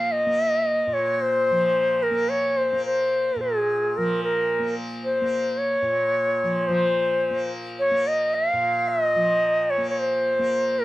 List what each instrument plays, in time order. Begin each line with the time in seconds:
Already playing: tanpura A#2 F3 A#3, bansuri F5
0.12 bansuri D#5
0.26 tanpura A#3
0.87 tanpura A#2
0.94 bansuri C#5
1.22 bansuri C5
1.51 tanpura F3
2.03 bansuri A#4
2.11 tanpura A#3
2.29 bansuri C#5
2.57 bansuri C5
2.73 tanpura A#3
2.86 bansuri C5
3.36 tanpura A#2
3.41 bansuri G#4
3.97 tanpura F3, bansuri A#4
4.24 bansuri A#4
4.59 tanpura A#3
5.05 bansuri C5
5.21 tanpura A#3
5.58 bansuri C#5
5.82 tanpura A#2
6.43 tanpura F3
6.67 tanpura F3, bansuri C5
7.31 tanpura A#3
7.79 bansuri C#5
7.91 tanpura A#3
8.07 bansuri D#5
8.34 bansuri F5
8.53 tanpura A#2
8.88 bansuri D#5
9.15 tanpura F3
9.70 bansuri C#5
9.78 tanpura A#3
9.90 bansuri C#5
9.99 bansuri C5
10.39 tanpura A#3
10.79 bansuri A#4